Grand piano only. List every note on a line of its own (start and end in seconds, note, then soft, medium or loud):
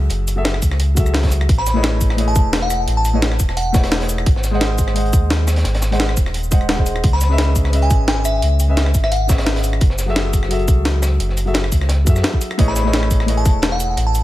0.00 0.34 F#3 medium
0.00 0.34 F#4 medium
0.00 0.35 G#4 medium
0.00 0.35 A4 medium
0.00 0.36 E5 medium
0.36 0.52 F#3 medium
0.36 0.53 F#4 medium
0.36 0.53 G#4 medium
0.36 0.53 A4 medium
0.36 0.53 E5 loud
0.95 1.47 F#3 medium
0.95 1.47 F#4 medium
0.95 1.48 G#4 medium
0.95 1.48 A4 medium
0.99 1.49 E5 medium
1.73 2.15 A3 medium
1.73 2.16 E4 medium
1.73 2.16 G#4 medium
1.73 2.17 B4 medium
1.73 2.17 C#5 medium
1.78 2.17 D#5 loud
2.16 3.11 A3 medium
2.16 3.11 E4 medium
2.16 3.12 G#4 medium
2.16 3.12 B4 medium
2.16 3.13 C#5 medium
2.20 3.13 D#5 medium
3.13 3.30 A3 medium
3.13 3.30 E4 medium
3.13 3.30 G#4 medium
3.13 3.30 B4 medium
3.13 3.31 C#5 medium
3.13 3.31 D#5 medium
3.72 4.24 A3 medium
3.72 4.25 E4 medium
3.72 4.25 G#4 medium
3.72 4.26 B4 medium
3.72 4.26 C#5 medium
3.76 4.26 D#5 medium
4.51 4.92 G#3 medium
4.51 4.93 G#4 medium
4.51 4.94 C5 medium
4.51 4.94 D#5 medium
4.55 4.95 F#5 loud
4.94 5.89 G#3 medium
4.94 5.89 G#4 medium
4.94 5.90 C5 medium
4.94 5.90 D#5 medium
4.94 5.91 F#5 medium
5.91 6.07 G#3 medium
5.91 6.08 G#4 medium
5.91 6.08 C5 medium
5.91 6.08 D#5 medium
5.91 6.08 F#5 medium
6.51 6.66 G#3 medium
6.51 6.67 G#4 medium
6.51 6.67 C5 medium
6.51 6.67 D#5 medium
6.51 6.67 F#5 loud
6.68 6.76 G#3 medium
6.68 6.76 G#4 medium
6.68 6.76 C5 medium
6.68 6.77 D#5 medium
6.68 6.77 F#5 medium
6.78 7.03 G#3 medium
6.78 7.03 G#4 medium
6.78 7.03 C5 medium
6.78 7.03 D#5 medium
7.29 7.70 C#4 medium
7.29 7.71 G#4 medium
7.29 7.71 B4 medium
7.29 7.72 D#5 medium
7.29 7.72 E5 loud
7.71 8.66 C#4 medium
7.71 8.66 G#4 medium
7.71 8.67 B4 medium
7.71 8.67 D#5 medium
7.75 8.68 E5 medium
8.68 8.85 C#4 medium
8.68 8.85 G#4 medium
8.68 8.85 B4 medium
8.68 8.85 D#5 medium
8.68 8.86 E5 medium
9.27 9.79 C#4 medium
9.27 9.80 G#4 medium
9.27 9.80 B4 medium
9.27 9.81 D#5 medium
9.31 9.81 E5 loud
10.06 10.47 F#3 medium
10.06 10.48 F#4 medium
10.06 10.49 G#4 medium
10.06 10.49 A4 medium
10.06 10.50 E5 loud
10.49 11.43 F#3 medium
10.49 11.44 F#4 medium
10.49 11.44 G#4 medium
10.49 11.45 A4 medium
10.49 11.45 E5 loud
11.46 11.62 F#3 medium
11.46 11.62 F#4 medium
11.46 11.63 G#4 medium
11.46 11.63 A4 medium
11.46 11.63 E5 medium
12.05 12.57 F#3 medium
12.05 12.57 F#4 medium
12.05 12.57 G#4 medium
12.05 12.58 A4 medium
12.09 12.59 E5 loud
12.58 12.81 A3 loud
12.58 12.81 E4 loud
12.58 12.82 G#4 medium
12.58 12.82 B4 medium
12.58 12.82 C#5 loud
12.58 12.82 D#5 loud
12.83 13.25 A3 medium
12.83 13.25 E4 medium
12.83 13.26 G#4 medium
12.83 13.26 B4 medium
12.83 13.27 C#5 medium
12.87 13.27 D#5 loud
13.26 14.21 A3 medium
13.26 14.21 E4 medium
13.26 14.22 G#4 medium
13.26 14.22 B4 medium
13.26 14.22 C#5 medium
13.26 14.23 D#5 medium